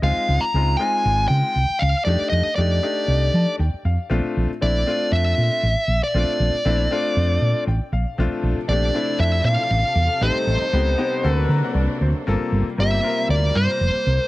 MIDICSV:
0, 0, Header, 1, 6, 480
1, 0, Start_track
1, 0, Tempo, 510204
1, 31, Time_signature, 4, 2, 24, 8
1, 13432, End_track
2, 0, Start_track
2, 0, Title_t, "Lead electric guitar"
2, 0, Program_c, 0, 29
2, 31, Note_on_c, 0, 77, 86
2, 383, Note_on_c, 0, 82, 86
2, 412, Note_off_c, 0, 77, 0
2, 717, Note_off_c, 0, 82, 0
2, 723, Note_on_c, 0, 80, 89
2, 1181, Note_off_c, 0, 80, 0
2, 1203, Note_on_c, 0, 79, 85
2, 1685, Note_on_c, 0, 77, 77
2, 1711, Note_off_c, 0, 79, 0
2, 1922, Note_off_c, 0, 77, 0
2, 1925, Note_on_c, 0, 74, 83
2, 2155, Note_off_c, 0, 74, 0
2, 2159, Note_on_c, 0, 75, 71
2, 2396, Note_off_c, 0, 75, 0
2, 2403, Note_on_c, 0, 74, 64
2, 3337, Note_off_c, 0, 74, 0
2, 4349, Note_on_c, 0, 74, 85
2, 4822, Note_off_c, 0, 74, 0
2, 4826, Note_on_c, 0, 76, 94
2, 5673, Note_off_c, 0, 76, 0
2, 5677, Note_on_c, 0, 74, 78
2, 7185, Note_off_c, 0, 74, 0
2, 8173, Note_on_c, 0, 74, 78
2, 8653, Note_off_c, 0, 74, 0
2, 8657, Note_on_c, 0, 76, 88
2, 8891, Note_off_c, 0, 76, 0
2, 8894, Note_on_c, 0, 77, 90
2, 9619, Note_on_c, 0, 72, 79
2, 9639, Note_off_c, 0, 77, 0
2, 10672, Note_off_c, 0, 72, 0
2, 10672, Note_on_c, 0, 71, 79
2, 11265, Note_off_c, 0, 71, 0
2, 12042, Note_on_c, 0, 76, 77
2, 12482, Note_off_c, 0, 76, 0
2, 12516, Note_on_c, 0, 74, 77
2, 12752, Note_on_c, 0, 72, 79
2, 12759, Note_off_c, 0, 74, 0
2, 13432, Note_off_c, 0, 72, 0
2, 13432, End_track
3, 0, Start_track
3, 0, Title_t, "Grand piano"
3, 0, Program_c, 1, 0
3, 20, Note_on_c, 1, 56, 65
3, 22, Note_on_c, 1, 60, 61
3, 28, Note_on_c, 1, 63, 61
3, 34, Note_on_c, 1, 65, 73
3, 388, Note_off_c, 1, 56, 0
3, 389, Note_off_c, 1, 60, 0
3, 392, Note_off_c, 1, 63, 0
3, 395, Note_off_c, 1, 65, 0
3, 514, Note_on_c, 1, 56, 61
3, 519, Note_on_c, 1, 60, 56
3, 525, Note_on_c, 1, 63, 56
3, 528, Note_on_c, 1, 65, 72
3, 694, Note_off_c, 1, 56, 0
3, 696, Note_off_c, 1, 60, 0
3, 700, Note_off_c, 1, 63, 0
3, 701, Note_off_c, 1, 65, 0
3, 746, Note_on_c, 1, 56, 72
3, 747, Note_on_c, 1, 60, 62
3, 754, Note_on_c, 1, 63, 65
3, 759, Note_on_c, 1, 65, 78
3, 1456, Note_off_c, 1, 56, 0
3, 1456, Note_off_c, 1, 60, 0
3, 1460, Note_off_c, 1, 63, 0
3, 1462, Note_off_c, 1, 65, 0
3, 1935, Note_on_c, 1, 57, 63
3, 1944, Note_on_c, 1, 62, 60
3, 1946, Note_on_c, 1, 63, 59
3, 1951, Note_on_c, 1, 67, 69
3, 2304, Note_off_c, 1, 57, 0
3, 2309, Note_off_c, 1, 62, 0
3, 2310, Note_off_c, 1, 63, 0
3, 2313, Note_off_c, 1, 67, 0
3, 2417, Note_on_c, 1, 62, 53
3, 2420, Note_on_c, 1, 57, 65
3, 2423, Note_on_c, 1, 63, 57
3, 2432, Note_on_c, 1, 67, 72
3, 2605, Note_off_c, 1, 62, 0
3, 2606, Note_off_c, 1, 57, 0
3, 2607, Note_off_c, 1, 63, 0
3, 2612, Note_off_c, 1, 67, 0
3, 2658, Note_on_c, 1, 57, 73
3, 2662, Note_on_c, 1, 63, 66
3, 2663, Note_on_c, 1, 62, 66
3, 2665, Note_on_c, 1, 67, 77
3, 3149, Note_on_c, 1, 81, 57
3, 3370, Note_off_c, 1, 57, 0
3, 3371, Note_off_c, 1, 81, 0
3, 3372, Note_off_c, 1, 63, 0
3, 3373, Note_off_c, 1, 62, 0
3, 3374, Note_off_c, 1, 67, 0
3, 3388, Note_on_c, 1, 79, 55
3, 3610, Note_off_c, 1, 79, 0
3, 3624, Note_on_c, 1, 77, 58
3, 3848, Note_off_c, 1, 77, 0
3, 3854, Note_on_c, 1, 57, 80
3, 3854, Note_on_c, 1, 60, 74
3, 3863, Note_on_c, 1, 62, 67
3, 3865, Note_on_c, 1, 65, 87
3, 4222, Note_off_c, 1, 57, 0
3, 4222, Note_off_c, 1, 60, 0
3, 4227, Note_off_c, 1, 62, 0
3, 4228, Note_off_c, 1, 65, 0
3, 4337, Note_on_c, 1, 57, 61
3, 4341, Note_on_c, 1, 60, 60
3, 4345, Note_on_c, 1, 62, 55
3, 4346, Note_on_c, 1, 64, 73
3, 4523, Note_off_c, 1, 57, 0
3, 4525, Note_off_c, 1, 60, 0
3, 4527, Note_off_c, 1, 62, 0
3, 4527, Note_off_c, 1, 64, 0
3, 4574, Note_on_c, 1, 57, 74
3, 4579, Note_on_c, 1, 60, 65
3, 4584, Note_on_c, 1, 62, 62
3, 4593, Note_on_c, 1, 65, 77
3, 5286, Note_off_c, 1, 57, 0
3, 5289, Note_off_c, 1, 60, 0
3, 5291, Note_off_c, 1, 62, 0
3, 5296, Note_off_c, 1, 65, 0
3, 5777, Note_on_c, 1, 60, 59
3, 5778, Note_on_c, 1, 57, 67
3, 5788, Note_on_c, 1, 62, 59
3, 5790, Note_on_c, 1, 65, 71
3, 6142, Note_off_c, 1, 60, 0
3, 6143, Note_off_c, 1, 57, 0
3, 6148, Note_off_c, 1, 62, 0
3, 6149, Note_off_c, 1, 65, 0
3, 6254, Note_on_c, 1, 57, 75
3, 6261, Note_on_c, 1, 60, 69
3, 6262, Note_on_c, 1, 62, 67
3, 6271, Note_on_c, 1, 64, 78
3, 6440, Note_off_c, 1, 57, 0
3, 6443, Note_off_c, 1, 60, 0
3, 6444, Note_off_c, 1, 62, 0
3, 6448, Note_off_c, 1, 64, 0
3, 6497, Note_on_c, 1, 57, 82
3, 6501, Note_on_c, 1, 60, 83
3, 6506, Note_on_c, 1, 62, 77
3, 6514, Note_on_c, 1, 65, 88
3, 7207, Note_off_c, 1, 57, 0
3, 7209, Note_off_c, 1, 60, 0
3, 7211, Note_off_c, 1, 62, 0
3, 7215, Note_off_c, 1, 65, 0
3, 7226, Note_on_c, 1, 79, 58
3, 7446, Note_off_c, 1, 79, 0
3, 7459, Note_on_c, 1, 77, 60
3, 7683, Note_off_c, 1, 77, 0
3, 7695, Note_on_c, 1, 57, 77
3, 7699, Note_on_c, 1, 60, 67
3, 7702, Note_on_c, 1, 62, 67
3, 7713, Note_on_c, 1, 65, 86
3, 8060, Note_off_c, 1, 57, 0
3, 8062, Note_off_c, 1, 60, 0
3, 8064, Note_off_c, 1, 62, 0
3, 8069, Note_off_c, 1, 65, 0
3, 8175, Note_on_c, 1, 57, 59
3, 8179, Note_on_c, 1, 60, 52
3, 8187, Note_on_c, 1, 62, 59
3, 8193, Note_on_c, 1, 67, 68
3, 8360, Note_off_c, 1, 57, 0
3, 8361, Note_off_c, 1, 60, 0
3, 8365, Note_off_c, 1, 62, 0
3, 8368, Note_off_c, 1, 67, 0
3, 8413, Note_on_c, 1, 57, 69
3, 8415, Note_on_c, 1, 60, 68
3, 8418, Note_on_c, 1, 62, 62
3, 8429, Note_on_c, 1, 64, 73
3, 9125, Note_off_c, 1, 57, 0
3, 9126, Note_off_c, 1, 60, 0
3, 9127, Note_off_c, 1, 62, 0
3, 9133, Note_off_c, 1, 64, 0
3, 9600, Note_on_c, 1, 57, 70
3, 9608, Note_on_c, 1, 60, 60
3, 9611, Note_on_c, 1, 63, 62
3, 9618, Note_on_c, 1, 67, 68
3, 9974, Note_off_c, 1, 57, 0
3, 9977, Note_off_c, 1, 60, 0
3, 9979, Note_off_c, 1, 63, 0
3, 9982, Note_off_c, 1, 67, 0
3, 10096, Note_on_c, 1, 59, 63
3, 10102, Note_on_c, 1, 60, 59
3, 10107, Note_on_c, 1, 63, 57
3, 10111, Note_on_c, 1, 67, 66
3, 10281, Note_off_c, 1, 59, 0
3, 10284, Note_off_c, 1, 60, 0
3, 10286, Note_off_c, 1, 63, 0
3, 10288, Note_off_c, 1, 67, 0
3, 10328, Note_on_c, 1, 59, 86
3, 10333, Note_on_c, 1, 60, 84
3, 10336, Note_on_c, 1, 63, 78
3, 10341, Note_on_c, 1, 67, 89
3, 10557, Note_off_c, 1, 60, 0
3, 10567, Note_on_c, 1, 58, 75
3, 10571, Note_on_c, 1, 60, 73
3, 10575, Note_off_c, 1, 59, 0
3, 10577, Note_on_c, 1, 66, 76
3, 10579, Note_off_c, 1, 63, 0
3, 10579, Note_on_c, 1, 69, 93
3, 10581, Note_off_c, 1, 67, 0
3, 10822, Note_on_c, 1, 82, 67
3, 10943, Note_off_c, 1, 82, 0
3, 10954, Note_on_c, 1, 78, 69
3, 11054, Note_on_c, 1, 74, 54
3, 11056, Note_off_c, 1, 78, 0
3, 11282, Note_off_c, 1, 74, 0
3, 11306, Note_on_c, 1, 72, 58
3, 11348, Note_off_c, 1, 58, 0
3, 11350, Note_off_c, 1, 60, 0
3, 11353, Note_off_c, 1, 66, 0
3, 11354, Note_off_c, 1, 69, 0
3, 11528, Note_off_c, 1, 72, 0
3, 11542, Note_on_c, 1, 58, 85
3, 11545, Note_on_c, 1, 60, 72
3, 11550, Note_on_c, 1, 65, 73
3, 11554, Note_on_c, 1, 69, 90
3, 11907, Note_off_c, 1, 58, 0
3, 11908, Note_off_c, 1, 60, 0
3, 11911, Note_off_c, 1, 65, 0
3, 11913, Note_off_c, 1, 69, 0
3, 12020, Note_on_c, 1, 58, 61
3, 12026, Note_on_c, 1, 60, 64
3, 12032, Note_on_c, 1, 65, 60
3, 12039, Note_on_c, 1, 67, 69
3, 12205, Note_off_c, 1, 58, 0
3, 12208, Note_off_c, 1, 60, 0
3, 12211, Note_off_c, 1, 65, 0
3, 12214, Note_off_c, 1, 67, 0
3, 12255, Note_on_c, 1, 58, 68
3, 12262, Note_on_c, 1, 60, 65
3, 12264, Note_on_c, 1, 65, 66
3, 12272, Note_on_c, 1, 70, 75
3, 12971, Note_off_c, 1, 58, 0
3, 12974, Note_off_c, 1, 60, 0
3, 12975, Note_off_c, 1, 65, 0
3, 12979, Note_off_c, 1, 70, 0
3, 13432, End_track
4, 0, Start_track
4, 0, Title_t, "String section"
4, 0, Program_c, 2, 48
4, 7683, Note_on_c, 2, 62, 67
4, 7687, Note_on_c, 2, 53, 57
4, 7688, Note_on_c, 2, 69, 58
4, 7689, Note_on_c, 2, 48, 62
4, 9592, Note_off_c, 2, 62, 0
4, 9594, Note_off_c, 2, 53, 0
4, 9614, Note_on_c, 2, 51, 55
4, 9618, Note_on_c, 2, 55, 53
4, 9620, Note_on_c, 2, 63, 69
4, 10568, Note_off_c, 2, 51, 0
4, 10571, Note_off_c, 2, 55, 0
4, 10572, Note_off_c, 2, 63, 0
4, 10575, Note_on_c, 2, 62, 72
4, 10576, Note_on_c, 2, 54, 55
4, 10578, Note_on_c, 2, 58, 55
4, 11500, Note_off_c, 2, 69, 0
4, 11531, Note_off_c, 2, 54, 0
4, 11531, Note_off_c, 2, 62, 0
4, 11532, Note_off_c, 2, 58, 0
4, 11544, Note_on_c, 2, 55, 62
4, 11544, Note_on_c, 2, 58, 55
4, 13426, Note_off_c, 2, 48, 0
4, 13432, Note_off_c, 2, 55, 0
4, 13432, Note_off_c, 2, 58, 0
4, 13432, End_track
5, 0, Start_track
5, 0, Title_t, "Fingered electric bass"
5, 0, Program_c, 3, 33
5, 20, Note_on_c, 3, 37, 90
5, 128, Note_off_c, 3, 37, 0
5, 267, Note_on_c, 3, 37, 81
5, 372, Note_off_c, 3, 37, 0
5, 506, Note_on_c, 3, 37, 85
5, 699, Note_off_c, 3, 37, 0
5, 989, Note_on_c, 3, 32, 84
5, 1180, Note_off_c, 3, 32, 0
5, 1223, Note_on_c, 3, 49, 78
5, 1329, Note_off_c, 3, 49, 0
5, 1462, Note_on_c, 3, 36, 82
5, 1569, Note_off_c, 3, 36, 0
5, 1709, Note_on_c, 3, 37, 84
5, 1812, Note_off_c, 3, 37, 0
5, 1940, Note_on_c, 3, 41, 91
5, 2047, Note_off_c, 3, 41, 0
5, 2179, Note_on_c, 3, 41, 77
5, 2286, Note_off_c, 3, 41, 0
5, 2424, Note_on_c, 3, 41, 91
5, 2617, Note_off_c, 3, 41, 0
5, 2895, Note_on_c, 3, 36, 80
5, 3091, Note_off_c, 3, 36, 0
5, 3139, Note_on_c, 3, 53, 72
5, 3245, Note_off_c, 3, 53, 0
5, 3378, Note_on_c, 3, 39, 89
5, 3485, Note_off_c, 3, 39, 0
5, 3619, Note_on_c, 3, 41, 80
5, 3725, Note_off_c, 3, 41, 0
5, 3857, Note_on_c, 3, 34, 93
5, 3964, Note_off_c, 3, 34, 0
5, 4108, Note_on_c, 3, 34, 84
5, 4211, Note_off_c, 3, 34, 0
5, 4347, Note_on_c, 3, 34, 87
5, 4537, Note_off_c, 3, 34, 0
5, 4816, Note_on_c, 3, 41, 77
5, 5010, Note_off_c, 3, 41, 0
5, 5058, Note_on_c, 3, 46, 80
5, 5164, Note_off_c, 3, 46, 0
5, 5297, Note_on_c, 3, 33, 86
5, 5403, Note_off_c, 3, 33, 0
5, 5527, Note_on_c, 3, 34, 82
5, 5637, Note_off_c, 3, 34, 0
5, 5777, Note_on_c, 3, 34, 86
5, 5883, Note_off_c, 3, 34, 0
5, 6017, Note_on_c, 3, 34, 84
5, 6123, Note_off_c, 3, 34, 0
5, 6258, Note_on_c, 3, 34, 93
5, 6450, Note_off_c, 3, 34, 0
5, 6740, Note_on_c, 3, 41, 83
5, 6931, Note_off_c, 3, 41, 0
5, 6975, Note_on_c, 3, 46, 71
5, 7081, Note_off_c, 3, 46, 0
5, 7215, Note_on_c, 3, 33, 82
5, 7321, Note_off_c, 3, 33, 0
5, 7452, Note_on_c, 3, 34, 79
5, 7559, Note_off_c, 3, 34, 0
5, 7697, Note_on_c, 3, 34, 90
5, 7802, Note_off_c, 3, 34, 0
5, 7931, Note_on_c, 3, 34, 80
5, 8038, Note_off_c, 3, 34, 0
5, 8167, Note_on_c, 3, 34, 84
5, 8363, Note_off_c, 3, 34, 0
5, 8648, Note_on_c, 3, 41, 76
5, 8844, Note_off_c, 3, 41, 0
5, 8881, Note_on_c, 3, 46, 75
5, 8992, Note_off_c, 3, 46, 0
5, 9131, Note_on_c, 3, 33, 92
5, 9238, Note_off_c, 3, 33, 0
5, 9363, Note_on_c, 3, 40, 86
5, 9473, Note_off_c, 3, 40, 0
5, 9606, Note_on_c, 3, 33, 95
5, 9715, Note_off_c, 3, 33, 0
5, 9848, Note_on_c, 3, 33, 75
5, 9957, Note_off_c, 3, 33, 0
5, 10093, Note_on_c, 3, 37, 90
5, 10288, Note_off_c, 3, 37, 0
5, 10576, Note_on_c, 3, 38, 77
5, 10770, Note_off_c, 3, 38, 0
5, 10808, Note_on_c, 3, 50, 78
5, 10917, Note_off_c, 3, 50, 0
5, 11047, Note_on_c, 3, 36, 85
5, 11157, Note_off_c, 3, 36, 0
5, 11298, Note_on_c, 3, 38, 84
5, 11404, Note_off_c, 3, 38, 0
5, 11547, Note_on_c, 3, 31, 97
5, 11649, Note_off_c, 3, 31, 0
5, 11778, Note_on_c, 3, 31, 83
5, 11884, Note_off_c, 3, 31, 0
5, 12025, Note_on_c, 3, 31, 86
5, 12216, Note_off_c, 3, 31, 0
5, 12502, Note_on_c, 3, 38, 80
5, 12695, Note_off_c, 3, 38, 0
5, 12749, Note_on_c, 3, 43, 70
5, 12852, Note_off_c, 3, 43, 0
5, 12988, Note_on_c, 3, 29, 86
5, 13092, Note_off_c, 3, 29, 0
5, 13232, Note_on_c, 3, 36, 84
5, 13334, Note_off_c, 3, 36, 0
5, 13432, End_track
6, 0, Start_track
6, 0, Title_t, "Muted fingered electric bass strokes"
6, 2074, Note_on_c, 9, 29, 31
6, 2168, Note_off_c, 9, 29, 0
6, 2311, Note_on_c, 9, 29, 30
6, 2405, Note_off_c, 9, 29, 0
6, 7348, Note_on_c, 9, 29, 31
6, 7443, Note_off_c, 9, 29, 0
6, 8065, Note_on_c, 9, 29, 29
6, 8159, Note_off_c, 9, 29, 0
6, 9263, Note_on_c, 9, 29, 33
6, 9357, Note_off_c, 9, 29, 0
6, 11185, Note_on_c, 9, 29, 32
6, 11279, Note_off_c, 9, 29, 0
6, 11672, Note_on_c, 9, 29, 33
6, 11766, Note_off_c, 9, 29, 0
6, 13432, End_track
0, 0, End_of_file